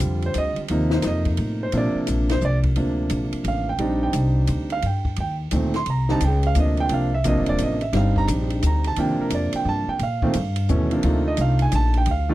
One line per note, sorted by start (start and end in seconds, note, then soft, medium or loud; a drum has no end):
0.00 0.34 F2 medium
0.00 0.63 D3 medium
0.00 0.63 G3 medium
0.00 0.63 C4 soft
0.00 0.63 F4 medium
0.00 hi-hat pedal medium
0.00 ride medium
0.22 0.36 C5 medium
0.22 ride soft
0.34 0.56 D2 medium
0.34 hi-hat pedal medium
0.34 ride medium
0.38 0.58 D#5 loud
0.56 muted upright bass stroke soft
0.56 ride soft
0.68 1.03 D#2 medium
0.68 1.66 C3 medium
0.68 1.66 F3 medium
0.68 1.66 A#3 medium
0.68 1.66 D#4 medium
0.68 ride medium
0.91 1.05 C5 medium
0.91 snare medium
1.02 1.37 F2 medium
1.02 snare soft
1.02 hi-hat pedal medium
1.02 ride medium
1.07 1.27 D#5 medium
1.25 kick medium
1.25 ride soft
1.37 1.72 A2 medium
1.37 ride medium
1.63 1.74 C5 medium
1.72 1.94 A#2 medium
1.72 2.69 C3 medium
1.72 2.69 F3 medium
1.72 2.69 A#3 medium
1.72 2.69 D4 medium
1.72 ride medium
1.78 1.97 D5 medium
1.95 muted upright bass stroke soft
2.07 2.41 A#1 medium
2.07 hi-hat pedal medium
2.07 ride medium
2.29 2.42 C5 medium
2.29 snare soft
2.29 ride medium
2.41 2.75 C2 medium
2.41 2.57 D5 medium
2.41 hi-hat pedal soft
2.63 kick medium
2.63 ride soft
2.76 3.10 D2 medium
2.76 3.72 C3 soft
2.76 3.73 F3 soft
2.76 3.73 A#3 soft
2.76 3.73 D4 medium
2.76 ride medium
3.10 3.31 A#1 medium
3.10 hi-hat pedal soft
3.10 ride medium
3.32 muted upright bass stroke soft
3.32 ride medium
3.44 3.78 A1 medium
3.44 ride medium
3.48 3.68 F5 medium
3.69 4.00 G5 medium
3.78 4.12 A#1 medium
3.78 4.76 G3 medium
3.78 4.76 C4 medium
3.78 4.76 D4 medium
3.78 4.76 D#4 medium
3.78 ride medium
4.03 4.14 G5 medium
4.13 4.47 C2 medium
4.13 hi-hat pedal medium
4.13 ride medium
4.47 4.82 D2 medium
4.47 hi-hat pedal medium
4.47 ride medium
4.70 4.83 F5 medium
4.70 ride soft
4.82 5.16 G2 medium
4.82 5.17 G5 medium
4.82 ride medium
5.05 kick medium
5.16 5.51 D#2 medium
5.16 ride medium
5.20 5.33 G5 medium
5.51 5.85 D2 medium
5.51 5.72 A#2 medium
5.51 5.73 D#3 medium
5.51 5.73 A3 medium
5.51 5.73 C4 medium
5.51 hi-hat pedal soft
5.51 ride medium
5.74 5.87 C6 medium
5.74 snare soft
5.74 ride soft
5.86 6.20 C2 medium
5.86 ride medium
5.90 6.10 A#5 medium
6.09 6.20 D3 medium
6.09 6.20 G3 medium
6.09 6.20 C4 medium
6.09 6.20 D#4 medium
6.09 6.22 A5 medium
6.09 snare soft
6.21 6.54 C#2 medium
6.21 6.44 G5 medium
6.21 hi-hat pedal medium
6.21 ride medium
6.43 6.57 F5 medium
6.43 ride soft
6.55 6.89 D2 medium
6.55 6.89 C3 soft
6.55 6.89 F3 soft
6.55 6.89 A#3 soft
6.55 6.89 D4 medium
6.55 hi-hat pedal medium
6.55 ride medium
6.60 6.79 D#5 medium
6.77 6.91 G5 loud
6.77 ride soft
6.89 7.23 C2 medium
6.89 7.10 C3 medium
6.89 7.10 F3 soft
6.89 7.10 A#3 medium
6.89 7.10 D4 medium
6.89 ride medium
6.93 7.13 F5 medium
7.14 7.25 E5 medium
7.24 7.37 A#1 medium
7.24 7.77 C3 medium
7.24 7.77 F3 medium
7.24 7.77 A#3 medium
7.24 7.77 D4 medium
7.24 7.48 D#5 medium
7.24 hi-hat pedal medium
7.24 ride medium
7.37 7.47 G1 medium
7.46 7.58 D#1 medium
7.46 7.60 D5 medium
7.46 ride medium
7.58 7.92 A1 medium
7.58 hi-hat pedal medium
7.58 ride medium
7.63 7.82 D#5 medium
7.81 7.93 E5 medium
7.81 ride soft
7.93 8.26 G1 loud
7.93 8.90 G3 soft
7.93 8.90 C4 medium
7.93 8.89 D4 medium
7.93 8.90 D#4 medium
7.93 8.17 F5 medium
7.93 snare soft
7.93 ride medium
8.16 8.24 A#5 loud
8.16 kick medium
8.27 8.61 A#1 loud
8.27 hi-hat pedal medium
8.27 ride medium
8.50 ride soft
8.62 8.96 D2 medium
8.62 hi-hat pedal medium
8.62 ride medium
8.67 8.86 A#5 medium
8.84 8.98 A5 medium
8.84 ride soft
8.96 9.17 D#2 medium
8.96 9.93 C3 medium
8.96 9.93 F3 medium
8.96 9.94 A#3 medium
8.96 9.94 D4 medium
8.96 9.20 G5 medium
8.96 ride medium
9.19 9.32 A#4 medium
9.19 muted upright bass stroke soft
9.30 9.51 F2 medium
9.30 hi-hat pedal medium
9.30 ride medium
9.35 9.55 D5 medium
9.53 9.66 G5 medium
9.53 muted upright bass stroke soft
9.53 ride medium
9.65 9.86 G2 medium
9.65 9.89 A5 medium
9.88 10.00 G5 medium
9.88 muted upright bass stroke soft
9.99 10.33 A#2 medium
9.99 10.66 F5 medium
9.99 ride medium
10.22 10.34 A#2 medium
10.22 10.34 D#3 medium
10.22 10.33 A3 medium
10.22 10.34 C4 medium
10.22 kick medium
10.33 10.68 G2 medium
10.33 hi-hat pedal medium
10.33 ride medium
10.56 ride medium
10.68 11.02 D#2 medium
10.68 10.89 B2 medium
10.68 10.89 E3 medium
10.68 10.89 A3 medium
10.68 10.89 C#4 medium
10.68 hi-hat pedal medium
10.91 11.22 C3 medium
10.91 11.22 F3 medium
10.91 11.22 A#3 medium
10.91 11.03 D4 medium
10.91 ride medium
11.03 11.37 D2 medium
11.03 12.00 A3 medium
11.03 12.00 D4 medium
11.03 12.00 D#4 medium
11.03 12.00 F4 medium
11.03 ride medium
11.28 11.38 D#5 medium
11.37 11.71 C2 medium
11.37 hi-hat pedal medium
11.37 ride medium
11.41 11.61 F5 medium
11.59 11.73 G#5 medium
11.59 ride soft
11.72 12.06 A#1 loud
11.72 11.95 A5 loud
11.72 hi-hat pedal medium
11.72 ride medium
11.94 12.08 G5 medium
11.94 ride soft
12.06 12.34 D2 medium
12.06 ride medium
12.11 12.34 F5 medium
12.29 12.34 D#3 medium
12.29 12.34 A3 medium
12.29 12.34 D4 medium
12.29 12.34 F4 medium